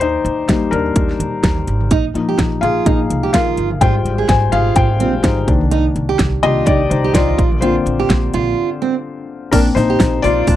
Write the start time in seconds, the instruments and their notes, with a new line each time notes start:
Already playing: upright bass D#2, felt piano G4 D5
0.00 felt piano D#4 C5, closed hi-hat
0.25 upright bass D#2, closed hi-hat
0.48 upright bass D#2, felt piano G3 A#3 D#4, kick, snare, closed hi-hat
0.71 upright bass D#2, felt piano D4 A#4, closed hi-hat, floor tom
0.96 upright bass D#2, kick, closed hi-hat
1.09 snare
1.20 upright bass D#2, closed hi-hat, floor tom
1.43 upright bass D#2, kick, snare, closed hi-hat
1.57 floor tom
1.67 upright bass G#1, closed hi-hat
1.81 floor tom
1.91 upright bass A#1, steel-string acoustic guitar D#4, kick, closed hi-hat
2.14 upright bass A#1, felt piano F3 A#3 D#4, closed hi-hat
2.29 steel-string acoustic guitar G4
2.39 upright bass A#1, kick, snare, closed hi-hat
2.61 upright bass A#1, steel-string acoustic guitar F4, felt piano G#4 F5, closed hi-hat, floor tom
2.85 upright bass A#1, felt piano F3 A#3 D#4, steel-string acoustic guitar D#4, kick, closed hi-hat
3.10 upright bass C2, closed hi-hat, floor tom
3.23 steel-string acoustic guitar G4
3.33 upright bass A#1, steel-string acoustic guitar F4, felt piano A#4 F5, kick, snare, closed hi-hat
3.47 floor tom
3.57 upright bass G1, closed hi-hat
3.71 floor tom
3.81 upright bass G#1, felt piano G3 G#3 F4 C5 G5, steel-string acoustic guitar F4, kick, closed hi-hat
4.05 upright bass G#1, closed hi-hat
4.18 steel-string acoustic guitar G#4
4.29 upright bass G#1, felt piano C5 G#5, kick, snare, closed hi-hat
4.52 upright bass G#1, steel-string acoustic guitar F4, felt piano G#4 F5, closed hi-hat, floor tom
4.76 upright bass G#1, felt piano C5 G5, kick, closed hi-hat
5.00 upright bass A#1, felt piano G3 G#3 F4, steel-string acoustic guitar C4, closed hi-hat, floor tom
5.23 upright bass G#1, felt piano D#4 C5, kick, snare, closed hi-hat
5.37 floor tom
5.47 upright bass C2, felt piano D#3 A#3 D4, kick, closed hi-hat
5.61 floor tom
5.71 steel-string acoustic guitar D#4, closed hi-hat
5.96 upright bass C2, closed hi-hat
6.09 steel-string acoustic guitar G4
6.19 upright bass C2, kick, snare, closed hi-hat
6.43 upright bass C2, felt piano D#3 A#3 D4 G4 D#5, steel-string acoustic guitar F4, closed hi-hat, floor tom
6.66 upright bass C2, steel-string acoustic guitar D#4, felt piano G4 D5, kick, closed hi-hat
6.90 upright bass C2, felt piano D#4 C5, closed hi-hat, floor tom
7.04 steel-string acoustic guitar G4
7.14 upright bass C2, steel-string acoustic guitar F4, felt piano F4 D5, kick, snare, closed hi-hat
7.28 floor tom
7.38 upright bass A#1, kick, closed hi-hat
7.52 floor tom
7.61 felt piano D3 A#3 C4 F4 C5, steel-string acoustic guitar F4, closed hi-hat
7.86 upright bass A#1, closed hi-hat
8.00 steel-string acoustic guitar G4
8.10 upright bass A#1, kick, snare, closed hi-hat
8.34 upright bass A#1, steel-string acoustic guitar F4, closed hi-hat, floor tom
8.82 steel-string acoustic guitar C4
9.51 upright bass A#1, felt piano A#3 C4 D4 A#4, steel-string acoustic guitar D4, kick, open hi-hat, crash
9.75 upright bass A#1, felt piano D#4 C5, floor tom, open hi-hat
9.90 steel-string acoustic guitar G4
10.00 upright bass A#1, kick, snare, open hi-hat
10.22 upright bass A#1, steel-string acoustic guitar F4, felt piano F4 D5, floor tom, open hi-hat
10.47 upright bass A#1, steel-string acoustic guitar D4, kick, open hi-hat